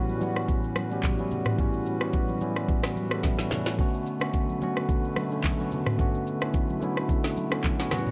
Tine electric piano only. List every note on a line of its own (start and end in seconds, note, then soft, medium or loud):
0.00 0.19 A2 medium
0.00 0.20 E3 medium
0.00 0.20 G3 medium
0.00 0.21 B3 medium
0.00 0.22 C#4 medium
0.00 0.23 F#4 loud
0.19 0.75 A2 medium
0.19 0.75 E3 medium
0.19 0.76 G3 medium
0.19 0.76 B3 medium
0.19 0.77 C#4 medium
0.19 0.77 F#4 medium
0.89 1.12 A2 medium
0.89 1.12 E3 medium
0.89 1.12 G3 medium
0.89 1.13 B3 medium
0.89 1.13 C#4 medium
0.89 1.14 G4 medium
1.17 1.50 A2 medium
1.17 1.51 E3 medium
1.17 1.51 G3 medium
1.17 1.51 B3 medium
1.17 1.52 C#4 medium
1.21 1.52 E4 medium
1.57 1.91 A2 medium
1.57 1.92 E3 medium
1.57 1.92 G3 medium
1.57 1.92 B3 medium
1.57 1.93 C#4 medium
1.57 1.93 F#4 medium
1.99 2.33 A2 medium
1.99 2.33 E3 medium
1.99 2.33 G3 medium
1.99 2.34 B3 medium
1.99 2.34 C#4 medium
2.03 2.35 F#4 loud
2.39 2.95 A2 medium
2.39 2.96 E3 medium
2.39 2.96 G3 medium
2.39 2.96 B3 medium
2.39 2.97 C#4 medium
2.39 2.97 E4 loud
3.09 3.32 A2 medium
3.09 3.32 E3 medium
3.09 3.33 G3 medium
3.09 3.24 B3 medium
3.09 3.24 C#4 medium
3.13 3.25 A4 medium
3.24 3.38 G4 medium
3.24 3.38 E5 medium
3.39 3.51 E4 medium
3.39 3.51 C#5 medium
3.51 3.66 C#4 medium
3.51 3.66 A4 medium
3.67 3.77 A3 medium
3.67 3.79 F#4 medium
3.77 4.11 D3 medium
3.77 4.12 A3 medium
3.77 4.12 B3 medium
3.77 4.13 C#4 medium
3.77 4.13 F#4 medium
4.19 4.53 D3 medium
4.19 4.53 A3 medium
4.19 4.54 B3 medium
4.19 4.54 C#4 medium
4.19 4.55 F#4 medium
4.59 5.15 D3 medium
4.59 5.16 A3 medium
4.59 5.16 B3 medium
4.59 5.17 C#4 medium
4.59 5.17 F#4 loud
5.29 5.52 D3 medium
5.29 5.52 A3 medium
5.29 5.53 B3 medium
5.29 5.53 C#4 medium
5.29 5.54 A4 medium
5.57 5.90 D3 medium
5.57 5.91 A3 medium
5.57 5.91 B3 medium
5.57 5.92 C#4 medium
5.57 5.92 F#4 medium
5.97 6.32 D3 medium
5.97 6.32 A3 medium
5.97 6.33 B3 medium
5.97 6.33 C#4 medium
5.97 6.33 F#4 medium
6.40 6.73 D3 medium
6.40 6.74 A3 medium
6.40 6.74 B3 medium
6.40 6.75 C#4 medium
6.40 6.75 E4 medium
6.80 7.36 D3 medium
6.80 7.36 A3 medium
6.80 7.37 B3 medium
6.80 7.37 C#4 medium
6.80 7.37 E4 loud
7.50 7.72 D3 medium
7.50 7.73 A3 medium
7.50 7.73 B3 medium
7.50 7.74 C#4 medium
7.50 7.74 F#4 medium
7.77 7.91 D3 medium
7.77 7.91 A3 medium
7.77 7.91 B3 medium
7.77 7.92 C#4 medium
7.77 7.93 F#4 medium
7.90 8.11 A2 medium
7.90 8.11 E3 medium
7.90 8.11 G3 medium
7.90 8.11 B3 medium
7.90 8.11 C#4 medium
7.90 8.11 F#4 loud